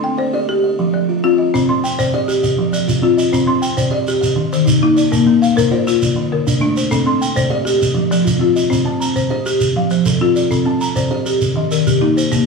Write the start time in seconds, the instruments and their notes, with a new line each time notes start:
Already playing: kalimba C4, marimba C6
0.04 marimba G5
0.18 marimba C5, kalimba D5
0.33 kalimba G4 D#5, marimba D5
0.49 marimba G4
0.64 kalimba D#5
0.79 kalimba F3
0.94 marimba F3 D5
1.09 kalimba F4
1.24 kalimba C4, marimba F4
1.38 marimba D#5
1.54 marimba C4, kalimba C5, shekere
1.69 kalimba C4, marimba C6
1.84 marimba G5, shekere
1.99 marimba C5, kalimba D5, shekere
2.14 kalimba G4 D#5, marimba D5
2.28 marimba G4, shekere
2.43 kalimba D#5, shekere
2.59 kalimba F3
2.73 marimba F3 D5, shekere
2.88 kalimba F4, shekere
3.02 kalimba C4, marimba F4
3.17 marimba D#5, shekere
3.32 marimba C4, kalimba C5, shekere
3.47 kalimba C4, marimba C6
3.62 marimba G5, shekere
3.77 marimba C5, kalimba D5, shekere
3.91 kalimba G4 D#5, marimba D5
4.07 marimba G4, shekere
4.21 kalimba D#5, shekere
4.36 kalimba D#3
4.53 marimba D#3 C5, shekere
4.66 kalimba D#4, shekere
4.82 kalimba A#3, marimba D#4
4.97 marimba D5, shekere
5.11 marimba A#3, kalimba A#4, shekere
5.26 kalimba A#3
5.42 marimba F5, shekere
5.56 marimba A#4, kalimba C5, shekere
5.71 kalimba F4 D5, marimba C5
5.87 marimba F4, shekere
6.02 kalimba D5, shekere
6.16 kalimba D3
6.32 marimba D3 A#4
6.47 kalimba D4, shekere
6.61 kalimba A3, marimba D4
6.77 marimba C5, shekere
6.91 marimba C4, kalimba A4, shekere
7.06 kalimba C4, marimba C6
7.21 marimba G5, shekere
7.36 marimba C5, kalimba D5, shekere
7.50 kalimba G4 D#5, marimba D5
7.65 marimba G4, shekere
7.80 kalimba D#5, shekere
7.94 kalimba F3
8.11 marimba F3 D5, shekere
8.24 kalimba F4, shekere
8.39 kalimba C4, marimba F4
8.56 marimba D#5, shekere
8.70 marimba C4, kalimba C5, shekere
8.85 kalimba C4, marimba A5
9.00 marimba A#5, shekere
9.16 marimba C5, shekere
9.30 kalimba G4 D#5, marimba C5
9.46 marimba G4, shekere
9.61 shekere
9.76 kalimba F3, marimba F5
9.90 marimba F3 C5, shekere
10.06 marimba A4, kalimba A4, shekere
10.21 kalimba C4, marimba F4
10.36 marimba D5, shekere
10.51 marimba C4, kalimba A4, shekere
10.65 kalimba C4, marimba A5
10.81 marimba A#5, shekere
10.96 marimba C5, kalimba D5, shekere
11.11 kalimba G4 D#5, marimba C5
11.26 marimba G4, shekere
11.41 shekere
11.56 kalimba D#3, marimba D#5
11.71 marimba D#3 A#4, shekere
11.87 marimba G4, shekere
12.01 kalimba A#3, marimba D#4
12.17 marimba C5, shekere
12.31 marimba A#3, kalimba G4, shekere